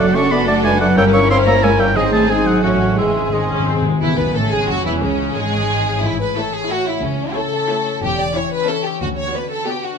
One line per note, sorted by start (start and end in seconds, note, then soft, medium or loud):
0.00 0.97 F#1 medium
0.00 0.99 F#2 medium
0.00 0.15 F#3 medium
0.00 0.93 D4 medium
0.00 0.93 F#4 medium
0.00 0.22 A4 medium
0.00 0.32 A4 medium
0.00 0.93 A4 medium
0.00 0.17 F#5 medium
0.00 0.47 A5 medium
0.07 0.99 F#3 soft
0.15 0.23 A3 medium
0.15 0.32 C#4 medium
0.15 0.88 D4 medium
0.15 0.23 D5 medium
0.15 0.33 C#6 medium
0.15 0.22 D6 medium
0.31 0.39 A3 medium
0.31 0.48 B3 medium
0.31 0.65 F#4 medium
0.31 0.71 D5 medium
0.31 0.40 D5 medium
0.31 0.47 B5 medium
0.31 0.37 D6 medium
0.40 0.79 A4 medium
0.47 0.55 A3 medium
0.47 0.64 A3 medium
0.47 0.55 D5 medium
0.47 0.63 A5 medium
0.47 0.55 A5 medium
0.47 0.54 D6 medium
0.56 0.99 D6 medium
0.64 0.81 G#3 medium
0.64 0.71 A3 medium
0.64 0.98 B4 medium
0.64 0.71 D5 medium
0.64 0.80 G#5 loud
0.64 0.99 A5 medium
0.64 0.70 D6 medium
0.72 0.99 D5 medium
0.80 0.97 F#3 medium
0.80 0.88 A3 medium
0.80 0.99 A4 medium
0.80 0.87 D5 medium
0.80 0.97 F#5 medium
0.80 0.87 D6 medium
0.89 0.99 D4 medium
0.96 1.94 G1 medium
0.96 1.97 G2 medium
0.96 1.14 G3 medium
0.96 1.04 A#3 medium
0.96 1.92 C#4 medium
0.96 1.92 E4 medium
0.96 1.92 A#4 medium
0.96 1.31 A#4 medium
0.96 1.04 C#5 medium
0.96 1.05 G5 loud
0.96 1.04 E6 medium
1.05 1.97 G3 medium
1.13 1.21 A#3 medium
1.13 1.30 C#4 medium
1.13 1.86 E4 medium
1.13 1.21 C#5 medium
1.13 1.30 C#6 loud
1.13 1.19 E6 medium
1.22 1.78 A#4 medium
1.30 1.38 A#3 medium
1.30 1.37 C4 loud
1.30 1.63 C5 medium
1.30 1.37 C#5 medium
1.30 1.70 C#5 medium
1.30 1.38 C6 medium
1.30 1.36 E6 medium
1.38 1.97 E5 medium
1.46 1.54 A#3 medium
1.46 1.53 A#3 medium
1.46 1.55 C#5 medium
1.46 1.65 A#5 loud
1.46 1.62 A#5 medium
1.46 1.53 E6 medium
1.55 1.98 C#6 medium
1.63 1.69 G#3 medium
1.63 1.70 A#3 medium
1.63 1.96 A#4 medium
1.63 1.71 C#5 medium
1.63 1.81 G#5 medium
1.63 1.98 A#5 medium
1.63 1.69 E6 medium
1.71 1.97 C#5 medium
1.79 1.96 G3 medium
1.79 1.87 A#3 medium
1.79 1.87 C#5 medium
1.79 1.98 G5 loud
1.79 1.86 E6 medium
1.87 1.97 E4 medium
1.95 2.63 G#1 medium
1.95 2.65 G#2 medium
1.95 2.12 D#3 medium
1.95 2.27 G#3 medium
1.95 2.59 C4 medium
1.95 2.59 D#4 medium
1.95 2.59 G#4 medium
1.95 2.29 G#4 medium
1.95 2.27 C5 medium
1.95 2.12 D#5 medium
1.95 2.27 D#6 medium
2.04 2.65 D#3 soft
2.12 2.29 A3 medium
2.12 2.64 D#4 medium
2.12 2.31 A5 medium
2.21 2.64 G#4 medium
2.29 2.46 G#3 medium
2.29 2.63 G#3 medium
2.29 2.63 D#4 medium
2.29 2.62 C5 medium
2.29 2.65 C5 medium
2.29 2.48 G#5 medium
2.29 2.63 D#6 medium
2.38 2.65 D#5 soft
2.45 2.61 F#3 medium
2.45 2.63 F#5 medium
2.45 2.65 G#5 medium
2.55 2.65 C6 medium
2.62 2.98 A1 medium
2.62 2.99 A2 medium
2.62 2.97 F#3 medium
2.62 3.00 A3 soft
2.62 2.96 C#4 medium
2.62 2.95 F#4 medium
2.62 2.97 F#4 medium
2.62 2.97 C#5 medium
2.62 2.97 F#5 medium
2.62 3.00 C#6 medium
2.72 2.99 A3 soft
2.81 2.99 C#4 soft
2.97 3.84 G#1 medium
2.97 4.03 G#2 medium
2.97 3.32 E3 medium
2.97 3.27 G#3 soft
2.97 3.32 G#3 medium
2.97 3.80 C4 soft
2.97 3.84 G#4 medium
2.97 3.32 G#4 medium
2.97 3.81 G#4 medium
2.97 3.34 E5 medium
2.97 3.32 C6 medium
3.06 3.12 G#2 soft
3.06 4.03 D#3 soft
3.14 3.20 G#2 soft
3.14 3.92 G#3 soft
3.21 3.28 G#2 soft
3.21 3.40 G#4 soft
3.29 3.35 G#2 soft
3.29 3.66 D#3 soft
3.29 3.49 G#3 soft
3.29 3.83 G#3 medium
3.29 3.83 G#4 soft
3.29 3.75 C5 soft
3.29 3.67 D#5 medium
3.29 3.83 C6 medium
3.36 3.43 G#2 soft
3.41 3.50 G#2 soft
3.41 3.83 G#4 soft
3.50 3.58 G#2 soft
3.50 3.67 C#4 medium
3.50 3.66 G#5 soft
3.59 3.66 G#2 medium
3.59 4.03 C6 soft
3.67 3.73 G#2 medium
3.67 3.85 C4 medium
3.67 4.51 G#5 soft
3.74 3.80 G#2 medium
3.74 4.03 C5 soft
3.82 3.88 G#2 medium
3.82 4.02 G#3 medium
3.82 4.26 G#4 soft
3.89 3.96 G#2 medium
3.93 4.18 G#3 soft
4.01 4.17 E1 medium
4.01 4.17 E2 medium
4.01 5.04 C#3 soft
4.01 4.08 E3 medium
4.01 4.17 E4 medium
4.11 7.04 C#4 soft
4.17 4.35 B1 medium
4.17 4.35 B2 medium
4.17 4.93 G#3 soft
4.17 4.35 B3 medium
4.17 4.35 B4 medium
4.27 4.43 G#4 soft
4.35 4.42 A1 soft
4.35 4.42 A2 medium
4.35 4.52 A3 medium
4.35 4.52 A4 medium
4.35 4.76 C#5 soft
4.44 4.84 G#4 soft
4.51 4.59 G#1 medium
4.51 4.59 G#2 medium
4.51 4.69 G#3 medium
4.51 4.69 G#4 medium
4.51 4.68 G#5 soft
4.60 5.52 C#6 soft
4.68 4.76 F#1 medium
4.68 4.76 F#2 medium
4.68 4.85 F#3 medium
4.68 4.85 F#4 medium
4.68 4.86 F#4 medium
4.68 5.60 G#5 soft
4.77 5.26 C#5 soft
4.85 5.02 E1 medium
4.85 5.02 E2 medium
4.85 5.02 E3 medium
4.85 4.92 E4 medium
4.85 5.02 E4 medium
4.85 5.35 G#4 soft
4.94 5.10 G#3 soft
5.01 5.36 C#2 medium
5.01 5.37 C#2 medium
5.01 5.36 C#3 medium
5.01 6.05 E3 medium
5.01 5.35 C#4 medium
5.19 5.94 E4 soft
5.27 5.85 C#5 soft
5.36 6.02 G#1 medium
5.36 6.02 G#2 medium
5.36 6.03 G#3 medium
5.36 5.77 G#4 soft
5.36 6.03 G#4 medium
5.36 6.04 G#4 medium
5.45 6.51 E5 soft
5.53 5.68 C#6 soft
5.61 6.05 G#5 soft
5.70 6.60 C#6 soft
5.78 6.05 G#4 soft
5.87 6.35 C#5 soft
5.95 6.27 E4 soft
6.03 6.30 A1 medium
6.03 6.30 A2 medium
6.03 7.04 A2 soft
6.03 6.20 E4 medium
6.12 7.04 E3 soft
6.20 6.92 A3 soft
6.20 6.36 B4 medium
6.28 6.85 E4 soft
6.36 6.61 A3 soft
6.36 6.62 E4 soft
6.36 6.53 A4 medium
6.36 6.76 C#5 soft
6.36 6.62 C#5 medium
6.45 7.44 A4 soft
6.53 6.70 G#4 medium
6.53 6.68 E5 soft
6.61 7.60 C#6 soft
6.69 6.94 A3 medium
6.69 6.94 E4 soft
6.69 6.86 F#4 medium
6.69 6.95 C#5 soft
6.69 7.52 E5 medium
6.77 7.35 C#5 soft
6.86 7.26 E4 soft
6.86 7.03 E4 medium
6.94 7.18 A3 soft
7.02 7.29 C#2 medium
7.02 7.30 C#2 medium
7.02 8.03 C#3 medium
7.02 7.36 C#4 medium
7.11 8.10 C#4 soft
7.19 7.93 A3 soft
7.28 7.85 E4 soft
7.36 7.61 A3 medium
7.36 7.61 E4 medium
7.36 8.02 A4 medium
7.36 7.76 C#5 soft
7.36 7.61 C#5 medium
7.45 8.04 A4 soft
7.53 7.68 E5 soft
7.61 8.51 C#6 soft
7.69 7.94 A3 medium
7.69 7.94 E4 medium
7.69 7.94 C#5 soft
7.69 8.43 E5 soft
7.78 8.26 C#5 soft
7.86 8.18 E4 soft
7.95 8.04 A3 soft
8.02 8.28 E1 medium
8.02 8.28 E2 medium
8.02 9.03 E3 medium
8.02 8.19 G4 medium
8.11 8.93 C#4 soft
8.19 8.34 E4 soft
8.19 8.35 D5 medium
8.28 8.75 C#5 soft
8.35 8.60 C#4 soft
8.35 8.60 E4 medium
8.35 8.84 E4 soft
8.35 8.60 C#5 medium
8.35 8.52 C#5 medium
8.44 8.59 E5 soft
8.52 8.68 B4 medium
8.52 8.67 C#6 soft
8.60 9.03 E5 soft
8.68 8.93 C#4 medium
8.68 8.93 E4 soft
8.68 8.85 A4 medium
8.68 8.93 C#5 soft
8.68 9.03 C#6 soft
8.77 9.03 C#5 soft
8.85 9.03 E4 soft
8.85 9.02 G4 medium
8.94 9.03 C#4 soft
9.01 9.28 D2 medium
9.01 9.98 D3 soft
9.01 9.08 F#4 medium
9.10 9.98 B3 soft
9.17 9.91 D4 soft
9.17 9.34 C#5 medium
9.26 9.83 F#4 soft
9.34 9.59 B3 soft
9.34 9.59 F#4 soft
9.34 9.75 B4 soft
9.34 9.51 B4 medium
9.34 9.59 D5 soft
9.43 9.98 D5 soft
9.50 9.67 A4 medium
9.50 9.66 F#5 soft
9.59 9.98 B5 soft
9.67 9.92 B3 soft
9.67 9.92 F#4 soft
9.67 9.84 G4 medium
9.67 9.92 D5 soft
9.67 9.98 F#5 soft
9.76 9.98 B4 soft
9.84 9.98 F#4 medium
9.84 9.98 F#4 soft
9.93 9.98 D4 soft